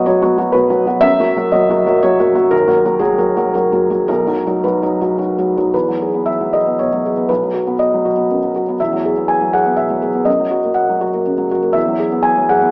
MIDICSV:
0, 0, Header, 1, 2, 480
1, 0, Start_track
1, 0, Key_signature, 5, "major"
1, 0, Tempo, 491400
1, 1017, Time_signature, 3, 2, 24, 8
1, 2948, Tempo, 542986
1, 5348, Tempo, 524476
1, 6308, Tempo, 496689
1, 12038, End_track
2, 0, Start_track
2, 0, Title_t, "Felt piano"
2, 0, Program_c, 0, 0
2, 0, Control_c, 0, 64, 127
2, 0, Note_on_c, 0, 54, 47
2, 0, Note_on_c, 0, 59, 43
2, 0, Note_on_c, 0, 66, 49
2, 0, Note_on_c, 0, 75, 79
2, 58, Note_on_c, 0, 73, 70
2, 63, Note_off_c, 0, 54, 0
2, 63, Note_on_c, 0, 54, 43
2, 68, Note_off_c, 0, 59, 0
2, 68, Note_on_c, 0, 59, 41
2, 70, Note_off_c, 0, 66, 0
2, 70, Note_on_c, 0, 66, 45
2, 198, Note_off_c, 0, 54, 0
2, 201, Note_off_c, 0, 59, 0
2, 204, Note_off_c, 0, 66, 0
2, 213, Note_on_c, 0, 54, 50
2, 216, Note_on_c, 0, 59, 48
2, 219, Note_on_c, 0, 66, 53
2, 353, Note_off_c, 0, 54, 0
2, 358, Note_off_c, 0, 59, 0
2, 359, Note_off_c, 0, 66, 0
2, 368, Note_on_c, 0, 54, 44
2, 372, Note_on_c, 0, 59, 43
2, 374, Note_on_c, 0, 66, 51
2, 508, Note_off_c, 0, 54, 0
2, 511, Note_on_c, 0, 71, 71
2, 512, Note_off_c, 0, 59, 0
2, 512, Note_off_c, 0, 66, 0
2, 523, Note_on_c, 0, 54, 38
2, 526, Note_on_c, 0, 59, 40
2, 526, Note_on_c, 0, 66, 51
2, 538, Note_off_c, 0, 73, 0
2, 666, Note_off_c, 0, 54, 0
2, 669, Note_off_c, 0, 59, 0
2, 671, Note_off_c, 0, 66, 0
2, 680, Note_on_c, 0, 54, 44
2, 684, Note_on_c, 0, 59, 45
2, 686, Note_on_c, 0, 66, 47
2, 829, Note_off_c, 0, 54, 0
2, 833, Note_off_c, 0, 59, 0
2, 834, Note_off_c, 0, 66, 0
2, 843, Note_on_c, 0, 54, 44
2, 849, Note_on_c, 0, 59, 45
2, 850, Note_on_c, 0, 66, 46
2, 983, Note_on_c, 0, 76, 102
2, 993, Note_off_c, 0, 54, 0
2, 993, Note_on_c, 0, 42, 69
2, 996, Note_off_c, 0, 59, 0
2, 997, Note_off_c, 0, 66, 0
2, 1001, Note_off_c, 0, 71, 0
2, 1032, Control_c, 0, 64, 0
2, 1040, Note_off_c, 0, 75, 0
2, 1160, Note_off_c, 0, 42, 0
2, 1168, Note_on_c, 0, 54, 44
2, 1169, Note_on_c, 0, 58, 46
2, 1174, Note_on_c, 0, 66, 52
2, 1175, Control_c, 0, 64, 127
2, 1315, Note_off_c, 0, 54, 0
2, 1317, Note_off_c, 0, 58, 0
2, 1319, Note_off_c, 0, 66, 0
2, 1330, Note_on_c, 0, 54, 50
2, 1335, Note_on_c, 0, 58, 45
2, 1341, Note_on_c, 0, 66, 52
2, 1474, Note_off_c, 0, 54, 0
2, 1481, Note_off_c, 0, 58, 0
2, 1481, Note_off_c, 0, 76, 0
2, 1482, Note_on_c, 0, 75, 69
2, 1484, Note_off_c, 0, 66, 0
2, 1489, Note_on_c, 0, 54, 44
2, 1497, Note_on_c, 0, 58, 46
2, 1501, Note_on_c, 0, 66, 49
2, 1637, Note_off_c, 0, 54, 0
2, 1643, Note_off_c, 0, 58, 0
2, 1645, Note_off_c, 0, 66, 0
2, 1652, Note_on_c, 0, 54, 47
2, 1660, Note_on_c, 0, 58, 49
2, 1663, Note_on_c, 0, 66, 56
2, 1800, Note_off_c, 0, 54, 0
2, 1805, Note_off_c, 0, 58, 0
2, 1806, Note_off_c, 0, 66, 0
2, 1820, Note_on_c, 0, 54, 46
2, 1820, Note_on_c, 0, 58, 51
2, 1826, Note_on_c, 0, 66, 53
2, 1964, Note_off_c, 0, 54, 0
2, 1964, Note_off_c, 0, 58, 0
2, 1968, Note_off_c, 0, 66, 0
2, 1972, Note_off_c, 0, 75, 0
2, 1980, Note_on_c, 0, 73, 81
2, 1985, Note_on_c, 0, 54, 41
2, 1985, Note_on_c, 0, 58, 40
2, 1993, Note_on_c, 0, 66, 50
2, 2127, Note_off_c, 0, 54, 0
2, 2127, Note_off_c, 0, 58, 0
2, 2131, Note_off_c, 0, 66, 0
2, 2142, Note_on_c, 0, 54, 42
2, 2144, Note_on_c, 0, 58, 50
2, 2147, Note_on_c, 0, 66, 50
2, 2279, Note_off_c, 0, 54, 0
2, 2284, Note_off_c, 0, 58, 0
2, 2285, Note_off_c, 0, 66, 0
2, 2294, Note_on_c, 0, 54, 44
2, 2298, Note_on_c, 0, 58, 46
2, 2300, Note_on_c, 0, 66, 46
2, 2441, Note_off_c, 0, 54, 0
2, 2444, Note_off_c, 0, 58, 0
2, 2445, Note_off_c, 0, 66, 0
2, 2450, Note_on_c, 0, 70, 86
2, 2458, Note_on_c, 0, 39, 62
2, 2461, Note_off_c, 0, 73, 0
2, 2480, Control_c, 0, 64, 0
2, 2610, Note_on_c, 0, 54, 45
2, 2611, Control_c, 0, 64, 127
2, 2614, Note_on_c, 0, 58, 49
2, 2615, Note_off_c, 0, 39, 0
2, 2615, Note_on_c, 0, 66, 51
2, 2760, Note_off_c, 0, 54, 0
2, 2763, Note_off_c, 0, 58, 0
2, 2763, Note_off_c, 0, 66, 0
2, 2784, Note_on_c, 0, 54, 42
2, 2789, Note_on_c, 0, 58, 43
2, 2789, Note_on_c, 0, 66, 47
2, 2916, Note_off_c, 0, 54, 0
2, 2922, Note_off_c, 0, 58, 0
2, 2925, Note_on_c, 0, 68, 68
2, 2929, Note_off_c, 0, 66, 0
2, 2931, Note_on_c, 0, 54, 47
2, 2936, Note_on_c, 0, 58, 44
2, 2941, Note_off_c, 0, 70, 0
2, 2944, Note_on_c, 0, 66, 47
2, 3074, Note_off_c, 0, 54, 0
2, 3077, Note_off_c, 0, 58, 0
2, 3080, Note_off_c, 0, 66, 0
2, 3091, Note_on_c, 0, 54, 44
2, 3092, Note_on_c, 0, 58, 46
2, 3096, Note_on_c, 0, 66, 54
2, 3231, Note_off_c, 0, 54, 0
2, 3232, Note_off_c, 0, 58, 0
2, 3234, Note_off_c, 0, 66, 0
2, 3253, Note_on_c, 0, 54, 46
2, 3257, Note_on_c, 0, 58, 43
2, 3260, Note_on_c, 0, 66, 47
2, 3392, Note_off_c, 0, 54, 0
2, 3394, Note_off_c, 0, 58, 0
2, 3396, Note_off_c, 0, 66, 0
2, 3396, Note_off_c, 0, 68, 0
2, 3409, Note_on_c, 0, 70, 57
2, 3416, Note_on_c, 0, 54, 39
2, 3419, Note_on_c, 0, 66, 44
2, 3420, Note_on_c, 0, 58, 37
2, 3555, Note_off_c, 0, 54, 0
2, 3556, Note_off_c, 0, 66, 0
2, 3557, Note_off_c, 0, 58, 0
2, 3569, Note_on_c, 0, 54, 41
2, 3571, Note_on_c, 0, 58, 39
2, 3576, Note_on_c, 0, 66, 43
2, 3714, Note_off_c, 0, 54, 0
2, 3714, Note_off_c, 0, 58, 0
2, 3717, Note_off_c, 0, 66, 0
2, 3729, Note_on_c, 0, 54, 36
2, 3730, Note_on_c, 0, 58, 38
2, 3736, Note_on_c, 0, 66, 39
2, 3874, Note_off_c, 0, 70, 0
2, 3877, Note_off_c, 0, 54, 0
2, 3878, Note_off_c, 0, 58, 0
2, 3881, Note_off_c, 0, 66, 0
2, 3887, Note_on_c, 0, 70, 71
2, 3895, Note_on_c, 0, 35, 52
2, 3910, Control_c, 0, 64, 0
2, 4051, Note_on_c, 0, 54, 35
2, 4055, Note_off_c, 0, 35, 0
2, 4056, Note_on_c, 0, 63, 34
2, 4058, Note_on_c, 0, 66, 39
2, 4089, Control_c, 0, 64, 127
2, 4203, Note_off_c, 0, 54, 0
2, 4206, Note_off_c, 0, 63, 0
2, 4207, Note_off_c, 0, 66, 0
2, 4224, Note_on_c, 0, 54, 34
2, 4228, Note_on_c, 0, 63, 41
2, 4230, Note_on_c, 0, 66, 39
2, 4371, Note_off_c, 0, 54, 0
2, 4374, Note_off_c, 0, 63, 0
2, 4375, Note_off_c, 0, 66, 0
2, 4380, Note_on_c, 0, 71, 52
2, 4384, Note_on_c, 0, 54, 36
2, 4386, Note_off_c, 0, 70, 0
2, 4388, Note_on_c, 0, 63, 35
2, 4391, Note_on_c, 0, 66, 38
2, 4531, Note_off_c, 0, 63, 0
2, 4533, Note_off_c, 0, 54, 0
2, 4537, Note_off_c, 0, 66, 0
2, 4544, Note_on_c, 0, 63, 41
2, 4546, Note_on_c, 0, 54, 39
2, 4553, Note_on_c, 0, 66, 45
2, 4692, Note_off_c, 0, 63, 0
2, 4693, Note_off_c, 0, 54, 0
2, 4697, Note_off_c, 0, 66, 0
2, 4708, Note_on_c, 0, 54, 36
2, 4711, Note_on_c, 0, 63, 37
2, 4713, Note_on_c, 0, 66, 37
2, 4848, Note_off_c, 0, 54, 0
2, 4848, Note_off_c, 0, 63, 0
2, 4853, Note_off_c, 0, 66, 0
2, 4861, Note_on_c, 0, 54, 32
2, 4861, Note_on_c, 0, 63, 33
2, 4866, Note_off_c, 0, 71, 0
2, 4867, Note_on_c, 0, 66, 37
2, 5008, Note_off_c, 0, 54, 0
2, 5008, Note_off_c, 0, 63, 0
2, 5011, Note_off_c, 0, 66, 0
2, 5035, Note_on_c, 0, 54, 35
2, 5039, Note_on_c, 0, 63, 32
2, 5041, Note_on_c, 0, 66, 38
2, 5176, Note_off_c, 0, 54, 0
2, 5179, Note_off_c, 0, 63, 0
2, 5180, Note_off_c, 0, 66, 0
2, 5206, Note_on_c, 0, 54, 34
2, 5209, Note_on_c, 0, 63, 34
2, 5209, Note_on_c, 0, 66, 36
2, 5340, Note_off_c, 0, 54, 0
2, 5341, Note_off_c, 0, 66, 0
2, 5342, Note_off_c, 0, 63, 0
2, 5352, Note_on_c, 0, 71, 57
2, 5363, Note_on_c, 0, 40, 42
2, 5365, Control_c, 0, 64, 0
2, 5486, Note_on_c, 0, 54, 35
2, 5491, Control_c, 0, 64, 127
2, 5609, Note_on_c, 0, 68, 38
2, 5670, Note_off_c, 0, 54, 0
2, 5721, Note_on_c, 0, 59, 36
2, 5792, Note_off_c, 0, 68, 0
2, 5827, Note_on_c, 0, 76, 62
2, 5832, Note_off_c, 0, 71, 0
2, 5964, Note_on_c, 0, 54, 38
2, 6068, Note_off_c, 0, 76, 0
2, 6078, Note_on_c, 0, 75, 60
2, 6089, Note_on_c, 0, 68, 40
2, 6099, Note_off_c, 0, 59, 0
2, 6148, Note_off_c, 0, 54, 0
2, 6205, Note_on_c, 0, 59, 32
2, 6269, Note_off_c, 0, 68, 0
2, 6311, Note_off_c, 0, 75, 0
2, 6316, Note_on_c, 0, 73, 56
2, 6331, Note_on_c, 0, 47, 34
2, 6390, Note_off_c, 0, 59, 0
2, 6444, Note_on_c, 0, 54, 36
2, 6516, Note_off_c, 0, 47, 0
2, 6576, Note_on_c, 0, 68, 33
2, 6632, Note_off_c, 0, 54, 0
2, 6686, Note_on_c, 0, 59, 38
2, 6758, Note_off_c, 0, 68, 0
2, 6765, Note_off_c, 0, 40, 0
2, 6797, Note_on_c, 0, 71, 56
2, 6800, Note_off_c, 0, 73, 0
2, 6801, Note_off_c, 0, 59, 0
2, 6808, Note_on_c, 0, 35, 48
2, 6813, Control_c, 0, 64, 0
2, 6935, Note_on_c, 0, 54, 35
2, 6983, Control_c, 0, 64, 127
2, 7039, Note_on_c, 0, 66, 38
2, 7119, Note_off_c, 0, 54, 0
2, 7166, Note_on_c, 0, 59, 38
2, 7232, Note_off_c, 0, 66, 0
2, 7280, Note_off_c, 0, 71, 0
2, 7283, Note_on_c, 0, 75, 58
2, 7425, Note_on_c, 0, 54, 40
2, 7535, Note_on_c, 0, 66, 38
2, 7549, Note_off_c, 0, 59, 0
2, 7605, Note_off_c, 0, 54, 0
2, 7648, Note_on_c, 0, 59, 34
2, 7721, Note_off_c, 0, 66, 0
2, 7776, Note_on_c, 0, 42, 32
2, 7838, Note_off_c, 0, 59, 0
2, 7901, Note_on_c, 0, 54, 35
2, 7963, Note_off_c, 0, 42, 0
2, 8006, Note_off_c, 0, 75, 0
2, 8024, Note_on_c, 0, 66, 36
2, 8086, Note_off_c, 0, 54, 0
2, 8147, Note_on_c, 0, 59, 38
2, 8208, Note_off_c, 0, 66, 0
2, 8215, Note_off_c, 0, 35, 0
2, 8257, Note_off_c, 0, 59, 0
2, 8258, Note_on_c, 0, 76, 59
2, 8263, Control_c, 0, 64, 0
2, 8271, Note_on_c, 0, 40, 47
2, 8381, Note_on_c, 0, 54, 37
2, 8397, Control_c, 0, 64, 127
2, 8504, Note_on_c, 0, 68, 43
2, 8568, Note_off_c, 0, 54, 0
2, 8614, Note_on_c, 0, 59, 36
2, 8689, Note_off_c, 0, 68, 0
2, 8723, Note_on_c, 0, 80, 61
2, 8735, Note_off_c, 0, 76, 0
2, 8847, Note_on_c, 0, 54, 38
2, 8962, Note_off_c, 0, 80, 0
2, 8966, Note_on_c, 0, 78, 62
2, 8978, Note_on_c, 0, 68, 41
2, 8990, Note_off_c, 0, 59, 0
2, 9035, Note_off_c, 0, 54, 0
2, 9092, Note_on_c, 0, 59, 38
2, 9159, Note_off_c, 0, 68, 0
2, 9191, Note_on_c, 0, 76, 56
2, 9200, Note_off_c, 0, 78, 0
2, 9205, Note_on_c, 0, 47, 33
2, 9275, Note_off_c, 0, 59, 0
2, 9321, Note_on_c, 0, 54, 37
2, 9391, Note_off_c, 0, 47, 0
2, 9438, Note_on_c, 0, 68, 43
2, 9508, Note_off_c, 0, 54, 0
2, 9558, Note_on_c, 0, 59, 38
2, 9625, Note_off_c, 0, 68, 0
2, 9644, Note_off_c, 0, 40, 0
2, 9660, Note_on_c, 0, 75, 56
2, 9667, Note_off_c, 0, 76, 0
2, 9669, Note_on_c, 0, 42, 48
2, 9673, Note_off_c, 0, 59, 0
2, 9689, Control_c, 0, 64, 0
2, 9800, Note_on_c, 0, 54, 39
2, 9830, Control_c, 0, 64, 127
2, 9910, Note_on_c, 0, 66, 45
2, 9981, Note_off_c, 0, 54, 0
2, 10038, Note_on_c, 0, 58, 35
2, 10096, Note_off_c, 0, 66, 0
2, 10136, Note_off_c, 0, 75, 0
2, 10137, Note_on_c, 0, 78, 58
2, 10281, Note_on_c, 0, 54, 38
2, 10393, Note_on_c, 0, 66, 42
2, 10419, Note_off_c, 0, 58, 0
2, 10469, Note_off_c, 0, 54, 0
2, 10517, Note_on_c, 0, 58, 38
2, 10585, Note_off_c, 0, 66, 0
2, 10640, Note_on_c, 0, 49, 37
2, 10706, Note_off_c, 0, 58, 0
2, 10750, Note_on_c, 0, 54, 41
2, 10827, Note_off_c, 0, 49, 0
2, 10868, Note_off_c, 0, 78, 0
2, 10880, Note_on_c, 0, 66, 42
2, 10942, Note_off_c, 0, 54, 0
2, 10987, Note_on_c, 0, 58, 43
2, 11067, Note_off_c, 0, 66, 0
2, 11071, Note_off_c, 0, 42, 0
2, 11088, Note_on_c, 0, 76, 67
2, 11100, Note_on_c, 0, 40, 49
2, 11109, Note_off_c, 0, 58, 0
2, 11129, Control_c, 0, 64, 0
2, 11227, Note_on_c, 0, 54, 37
2, 11283, Control_c, 0, 64, 127
2, 11346, Note_on_c, 0, 68, 46
2, 11423, Note_off_c, 0, 54, 0
2, 11467, Note_on_c, 0, 59, 40
2, 11541, Note_off_c, 0, 68, 0
2, 11569, Note_on_c, 0, 80, 73
2, 11581, Note_off_c, 0, 76, 0
2, 11707, Note_on_c, 0, 54, 41
2, 11817, Note_off_c, 0, 80, 0
2, 11826, Note_on_c, 0, 78, 68
2, 11840, Note_on_c, 0, 68, 45
2, 11850, Note_off_c, 0, 59, 0
2, 11898, Note_off_c, 0, 54, 0
2, 11945, Note_on_c, 0, 59, 42
2, 12024, Note_off_c, 0, 68, 0
2, 12038, Note_off_c, 0, 40, 0
2, 12038, Note_off_c, 0, 59, 0
2, 12038, Note_off_c, 0, 78, 0
2, 12038, End_track
0, 0, End_of_file